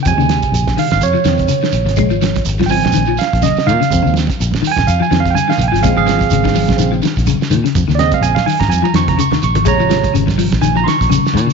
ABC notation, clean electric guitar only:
X:1
M:4/4
L:1/16
Q:"Swing 16ths" 1/4=125
K:Bbm
V:1 name="Clean electric guitar" clef=bass
D, D,2 z3 E,2 z F, E,2 D, E,2 z | A, F, F,2 z F, F,2 E, F, z2 D,2 E, D,- | D, D,2 z3 E,2 z F, E,2 D, E,2 F, | A, F, F,2 D, E, F,2 E, F, E,2 D,2 E, D,- |
D, D,2 z3 E,2 z F, E,2 D, E,2 F, | A, F, F,2 D, z F,2 E, F, E,2 D,2 E, D, |]